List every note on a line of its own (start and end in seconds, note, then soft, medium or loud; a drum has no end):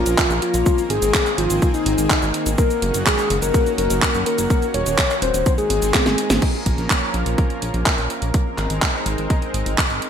0.00 0.64 F3 medium
0.00 4.46 A#3 medium
0.00 0.64 C#4 medium
0.00 0.34 F4 loud
0.00 0.64 A#4 medium
0.06 0.16 A#1 medium
0.06 closed hi-hat medium
0.06 cabasa medium
0.18 kick loud
0.18 clap loud
0.18 cabasa medium
0.30 0.40 A#1 medium
0.30 closed hi-hat soft
0.30 cabasa soft
0.42 0.82 F4 loud
0.42 closed hi-hat medium
0.54 0.64 A#1 medium
0.54 closed hi-hat soft
0.54 cabasa medium
0.66 5.42 D#3 medium
0.66 2.56 C4 medium
0.66 2.56 G#4 medium
0.66 kick loud
0.66 closed hi-hat medium
0.66 cabasa medium
0.78 closed hi-hat soft
0.78 cabasa soft
0.90 1.00 G#1 loud
0.90 1.30 G#4 loud
0.90 closed hi-hat medium
1.02 1.12 G#1 medium
1.02 closed hi-hat medium
1.02 cabasa medium
1.14 kick loud
1.14 clap loud
1.14 closed hi-hat medium
1.14 cabasa medium
1.26 clap soft
1.26 closed hi-hat soft
1.26 cabasa soft
1.38 1.48 G#1 medium
1.38 1.68 F4 loud
1.38 closed hi-hat medium
1.50 1.60 G#1 medium
1.50 closed hi-hat medium
1.50 cabasa medium
1.62 kick loud
1.62 closed hi-hat medium
1.62 cabasa medium
1.74 2.49 D#4 loud
1.74 closed hi-hat soft
1.74 cabasa soft
1.86 1.96 G#1 medium
1.86 closed hi-hat medium
1.98 2.08 G#1 medium
1.98 closed hi-hat medium
1.98 cabasa medium
2.10 kick loud
2.10 clap loud
2.10 closed hi-hat medium
2.10 cabasa medium
2.22 2.32 G#1 medium
2.22 closed hi-hat soft
2.22 cabasa soft
2.34 closed hi-hat loud
2.46 2.56 G#1 medium
2.46 closed hi-hat medium
2.46 cabasa medium
2.58 5.43 C#4 medium
2.58 5.43 F#4 medium
2.58 2.98 A#4 loud
2.58 kick loud
2.58 closed hi-hat medium
2.58 cabasa soft
2.70 closed hi-hat soft
2.70 cabasa soft
2.82 2.92 F#1 loud
2.82 closed hi-hat loud
2.94 3.04 F#1 medium
2.94 closed hi-hat medium
2.94 cabasa medium
3.06 3.36 G#4 loud
3.06 kick loud
3.06 clap loud
3.06 cabasa soft
3.18 clap soft
3.18 closed hi-hat soft
3.18 cabasa soft
3.30 3.40 F#1 medium
3.30 closed hi-hat loud
3.42 3.52 F#1 medium
3.42 3.72 A#4 loud
3.42 closed hi-hat medium
3.42 cabasa medium
3.54 kick loud
3.54 closed hi-hat medium
3.54 cabasa medium
3.66 closed hi-hat soft
3.66 cabasa soft
3.78 3.88 F#1 loud
3.78 4.18 A#4 loud
3.78 closed hi-hat medium
3.90 4.00 F#1 medium
3.90 closed hi-hat medium
3.90 cabasa medium
4.02 kick loud
4.02 clap loud
4.02 closed hi-hat medium
4.02 cabasa soft
4.14 4.24 F#1 medium
4.14 closed hi-hat soft
4.14 cabasa soft
4.26 4.66 A#4 loud
4.26 closed hi-hat loud
4.38 4.48 F#1 medium
4.38 closed hi-hat medium
4.38 cabasa medium
4.50 5.45 A#3 medium
4.50 kick loud
4.50 closed hi-hat medium
4.50 cabasa soft
4.62 closed hi-hat soft
4.62 cabasa soft
4.74 4.84 D#1 loud
4.74 5.14 C#5 loud
4.74 closed hi-hat loud
4.86 4.96 D#1 medium
4.86 closed hi-hat medium
4.86 cabasa medium
4.98 kick loud
4.98 clap loud
4.98 closed hi-hat medium
4.98 cabasa soft
5.10 clap soft
5.10 closed hi-hat soft
5.10 cabasa soft
5.22 5.32 D#1 medium
5.22 5.52 C5 loud
5.22 closed hi-hat loud
5.34 5.44 D#1 medium
5.34 closed hi-hat medium
5.34 cabasa medium
5.46 6.41 D#3 medium
5.46 6.41 G#3 medium
5.46 6.41 C4 medium
5.46 6.41 G#4 medium
5.46 kick loud
5.46 closed hi-hat medium
5.46 cabasa soft
5.58 6.32 G#4 loud
5.58 closed hi-hat soft
5.58 cabasa soft
5.70 5.80 G#1 medium
5.70 closed hi-hat loud
5.82 5.92 G#1 medium
5.82 closed hi-hat medium
5.82 cabasa medium
5.94 kick loud
5.94 snare medium
5.94 clap loud
5.94 closed hi-hat medium
5.94 cabasa soft
6.06 6.16 G#1 medium
6.06 snare medium
6.06 closed hi-hat soft
6.06 cabasa soft
6.18 closed hi-hat loud
6.30 6.40 G#1 medium
6.30 snare medium
6.30 closed hi-hat medium
6.30 cabasa medium
6.42 8.32 F3 medium
6.42 8.32 A#3 medium
6.42 8.32 C#4 medium
6.42 8.32 A#4 medium
6.42 kick loud
6.42 closed hi-hat medium
6.42 crash medium
6.66 6.76 A#1 medium
6.66 kick medium
6.66 closed hi-hat medium
6.78 6.88 A#1 medium
6.78 closed hi-hat medium
6.90 kick loud
6.90 clap loud
6.90 closed hi-hat medium
7.14 7.24 A#1 medium
7.14 closed hi-hat medium
7.26 7.36 A#1 medium
7.26 closed hi-hat medium
7.38 kick loud
7.38 closed hi-hat medium
7.50 closed hi-hat soft
7.62 7.72 A#1 medium
7.62 closed hi-hat medium
7.74 7.84 A#1 medium
7.74 closed hi-hat medium
7.86 kick loud
7.86 clap loud
7.86 closed hi-hat medium
7.98 8.08 A#1 medium
7.98 closed hi-hat soft
8.10 closed hi-hat medium
8.22 8.32 A#1 medium
8.22 closed hi-hat medium
8.34 10.10 G#3 medium
8.34 10.10 C4 medium
8.34 10.10 D#4 medium
8.34 10.10 A#4 medium
8.34 kick loud
8.34 closed hi-hat medium
8.58 8.68 G#1 medium
8.58 clap soft
8.58 closed hi-hat medium
8.70 8.80 G#1 medium
8.70 closed hi-hat medium
8.82 kick loud
8.82 clap loud
8.82 closed hi-hat medium
9.06 9.16 G#1 medium
9.06 closed hi-hat medium
9.18 9.28 G#1 medium
9.18 closed hi-hat medium
9.30 kick loud
9.30 closed hi-hat medium
9.42 closed hi-hat soft
9.54 9.64 G#1 medium
9.54 closed hi-hat medium
9.66 9.76 G#1 medium
9.66 closed hi-hat soft
9.78 kick loud
9.78 clap loud
9.78 closed hi-hat medium
9.90 10.00 G#1 medium
9.90 closed hi-hat soft
10.02 closed hi-hat medium